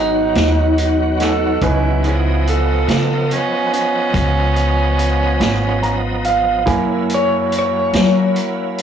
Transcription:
Already playing: G#1 F#3 B3 D#4 F#4 B4
0.35 D#2, snare, closed hi-hat
0.78 closed hi-hat
1.20 C#4 F#4 A4, snare, closed hi-hat
1.61 C#2 E3 F#3 B3 C#4 E4 B4 D#5, kick, closed hi-hat
2.03 F3 B3 D#5, closed hi-hat
2.07 G#3 C#4 E4
2.47 A4, closed hi-hat
2.88 C#3, snare, closed hi-hat
3.31 C#4, closed hi-hat
3.73 C#4, closed hi-hat
4.14 C#2, kick, closed hi-hat
4.56 closed hi-hat
4.99 closed hi-hat
5.40 G#1, snare, closed hi-hat
5.83 A#5, closed hi-hat
6.25 F5, closed hi-hat
6.66 F#2 F#3 A#3 E4 G#5, kick, closed hi-hat
7.10 closed hi-hat
7.14 C#5
7.52 closed hi-hat
7.59 C#5
7.93 F#3, snare, closed hi-hat
8.36 closed hi-hat
8.78 closed hi-hat

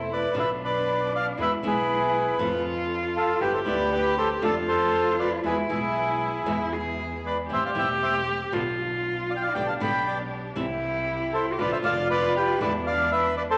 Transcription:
Already playing: E1 A3 C4 E4
0.13 B4 D5
0.34 B1 B2 D3 B3 D4 F4
0.39 B4 E5
0.65 B4 D5
1.15 D5 F5
1.37 E2 B2 E3 G#3 B3 E4 G#4 B4
1.42 E5
1.62 B1 B2 E3 G#3 B3 E4 G#4
1.67 G#4 B4
2.39 F2 C3 F3 A3 C4 F4 A4
3.16 F4 A4
3.41 G1 G3 B3 E4 G4 B4
3.54 A4 C5
3.65 D2 G3 B3 E4 G4 B4 D5
3.92 G4 B4
4.18 A4 C5
4.41 F2 D3 A3 D4 F4 A4 D5
4.68 A4 C5
5.20 B4 D5
5.43 E2 B2 E3 G#3 B3 E4 G#4 B4
5.69 B1 B2 E3 G#3 B3 E4 G#4
6.46 E2 B2 E3 G#3 B3 E4
6.73 G#4
7.26 B4 D5
7.49 A1 E3 G3 A3 C4 E4 G4 C5
7.53 E5
7.66 D5 F5
7.75 E1 E3 G3 A3 C4 E4 G4 E5 G5
8.03 C5 E5
8.52 B1 B2 D3 B3 D4 F4
9.30 D5 F5
9.36 G5
9.42 D5 F5
9.54 B1 B2 D3 G3 B3 D4 G4 D5 G5
9.66 F5 A5
9.79 B1 B2 D3 G3 B3 D4 G4 G5 B5
10.06 D5 G5
10.55 C2 C3 E3 G3 C4 E4 G4
11.33 A4 C5
11.53 G4
11.58 B1 B2 D3 B3 D4 F4 B4 D5
11.72 C5 E5
11.83 F1 B2 D3 B3 D4 F4 D5 F5
12.11 B4 D5
12.36 G4 B4
12.59 E2 B2 D3 G#3 B3 D4 E4 B4 D5
12.87 D5 F5
13.12 B4 E5
13.37 B4 D5
13.50 A4 C5

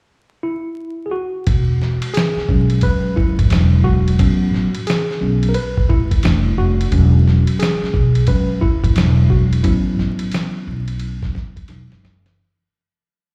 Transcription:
0.43 E4
1.06 G#4
1.11 F#4
1.47 E1, kick, ride
1.82 snare
2.02 ride
2.14 G#4, snare, hi-hat pedal, ride
2.36 muted upright bass stroke, snare
2.49 B1 F#3 G#3 C#4, kick
2.70 ride
2.81 B4, kick, ride
3.16 E4, kick
3.39 G#1, kick, ride
3.50 E1 F#3 G#3 D4, snare, hi-hat pedal, ride
3.84 F#4, kick
4.08 ride
4.19 A1 F#3 B3 C#4, kick, ride
4.53 A1, snare
4.75 ride
4.87 G#4, snare, hi-hat pedal, ride
5.11 snare
5.21 B1 F#3 B3 C#4
5.43 ride
5.49 A#4
5.54 B4, ride
5.77 kick
5.89 A1 E4, kick
6.11 kick, ride
6.23 F1 G3 A3 D4, snare, hi-hat pedal, ride
6.58 F1 F#4
6.81 ride
6.92 E1 F#3 G#3 C#4, kick, ride
7.28 snare
7.47 ride
7.59 G#4, snare, hi-hat pedal, ride
7.82 muted upright bass stroke, snare
7.94 B1, kick
8.15 ride
8.27 F#3 G#3 C#4 B4, kick, ride
8.61 E4, kick
8.83 G#1, kick, ride
8.96 E1 F#3 G#3 D4, snare, hi-hat pedal, ride
9.30 F#4, kick
9.53 ride
9.63 A1 F#3 B3 C#4 E4, kick, ride
9.99 A1, snare
10.19 ride
10.31 snare, hi-hat pedal, ride
10.67 B1
10.88 ride
10.99 ride
11.22 kick, snare
11.35 A1, kick, snare
11.56 kick, ride
11.68 E1 F#3 G#3 D#4, snare, hi-hat pedal, ride
11.90 F#1, snare
12.04 F#1, snare
12.26 snare, ride

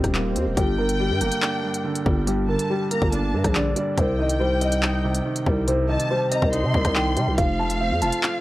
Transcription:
Already playing: G3 A#3 C4 D#4 G4 D#5, swell
0.04 D#1, kick, cross-stick, closed hi-hat
0.14 A#3, clap
0.36 D#2 C4, closed hi-hat
0.46 D#1
0.57 G1 G2 G4 G5, kick, closed hi-hat
0.78 D3 A#4
0.89 closed hi-hat
1.00 G3 G4
1.10 G2
1.21 G1 A#3 A#4, closed hi-hat
1.32 closed hi-hat
1.42 D4, clap
1.63 G2
1.74 closed hi-hat
1.84 D3
1.95 closed hi-hat
2.06 G1 G3, kick
2.27 G2 G4, closed hi-hat
2.48 D3 A#4 A5
2.59 closed hi-hat
2.70 G3 G4
2.91 A#3 A#4 A#5, closed hi-hat
3.02 G1, kick
3.12 D4 A5, closed hi-hat
3.34 G2
3.44 A#1, kick, cross-stick, closed hi-hat
3.55 D3 D5, clap
3.76 G3 D5, closed hi-hat
3.97 C2 C3 C5 G5, kick, closed hi-hat
4.19 D#3 D#5
4.29 closed hi-hat
4.40 G3 C5
4.61 C4 D#5, closed hi-hat
4.72 closed hi-hat
4.83 D#4, clap
5.04 C3
5.15 closed hi-hat
5.26 D#3
5.36 closed hi-hat
5.46 C2 G3, kick
5.68 C3 C5, closed hi-hat
5.89 D#3 D#5 A5
6.00 closed hi-hat
6.10 G3 C5
6.31 C4 D#5 A#5, closed hi-hat
6.42 C2, kick
6.53 D#4 C6, closed hi-hat
6.64 C3
6.74 C2 C3, kick
6.85 C2, kick, cross-stick, closed hi-hat
6.95 D#3 G5, clap
7.17 C3 G3 G5, closed hi-hat
7.27 C2
7.37 F1 F3 C4 A4 F5, kick, closed hi-hat
7.59 A3 A5
7.70 closed hi-hat
7.80 C4 F5
7.91 F2
8.02 F1 F4 A5, closed hi-hat
8.12 closed hi-hat
8.23 F5, clap

